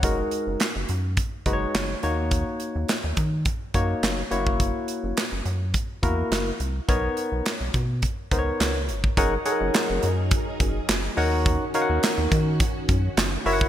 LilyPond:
<<
  \new Staff \with { instrumentName = "Tine electric piano" } { \time 4/4 \key ges \major \tempo 4 = 105 << { <cis'' fis''>16 r2. r8. | r1 | r1 | r1 |
r1 | r1 | } \\ { <aes ees' ges' bes'>4 r4. <aes ees' ges' ces'' des''>4 <bes ees' ges' des''>8~ | <bes ees' ges' des''>4 r4. <bes ees' ges' des''>4 <bes fes' ges' des''>8~ | <bes fes' ges' des''>4 r4. <bes fes' ges' bes'>4 r8 | <b dis' ais' cis''>4 r4. <b dis' ais' c'' cis''>4 r8 |
<ees' aes' bes' des'' ges''>16 r16 <ees' aes' a' bes' des'' ges''>4 r2 <ees' ges' bes' des'' ges''>8~ | <ees' ges' bes' des'' ges''>8 <ees' ges' bes' des'' f'' ges''>4 r2 <fes' ges' bes' des'' fes'' ges''>8 | } >> }
  \new Staff \with { instrumentName = "String machine" } { \time 4/4 \key ges \major r1 | r1 | r1 | r1 |
<ges ees' aes' bes'>2.~ <ges ees' aes' bes'>8 <ees des' ges'>8~ | <ees des' ges'>2.~ <ees des' ges'>8 <ges fes' bes'>8 | }
  \new Staff \with { instrumentName = "Analog synth bass" } { \clef bass \time 4/4 \key ges \major ges,,8 r16 ges,,16 r16 ges,,16 ges,8. r16 ges,,8 ges,,8 ees,8~ | ees,8 r16 ees,16 r16 ees,16 ees8. r16 ges,8 ges,,8 ges,,8~ | ges,,8 r16 ges,,16 r16 ges,,16 ges,8. r16 fes,8 ges,,8 c,8 | b,,8 r16 b,,16 r16 b,,16 b,8. r16 cis,8 cis,8 g,,8 |
ges,,8 r16 ges,,16 r16 ges,,16 ges,8. r16 ges,,8 ges,,8 ees,8~ | ees,8 r16 ees,16 r16 ees,16 ees8. r16 ges,8 ges,,8 ges,,8 | }
  \new DrumStaff \with { instrumentName = "Drums" } \drummode { \time 4/4 <hh bd>8 hh8 <hc hh sn>8 hh8 <hh bd>8 <hh bd>8 <hc hh sn>8 hh8 | <hh bd>8 hh8 <hc hh sn>8 <hh bd>8 <hh bd>8 <hh bd>8 <hc hh sn>8 hh16 bd16 | <hh bd>8 hh8 <hc hh sn>8 hh8 <hh bd>8 <hh bd>8 <hc hh sn>8 hh8 | <hh bd>8 hh8 <hc hh sn>8 <hh bd>8 <hh bd>8 <hh bd>8 <hc hh sn>8 hh16 bd16 |
<hh bd>8 hh8 <hc hh sn>8 hh8 <hh bd>8 <hh bd>8 <hc hh sn>8 hho8 | <hh bd>8 hh8 <hc hh sn>8 <hh bd>8 <hh bd>8 <hh bd>8 <hc hh sn>8 hho16 bd16 | }
>>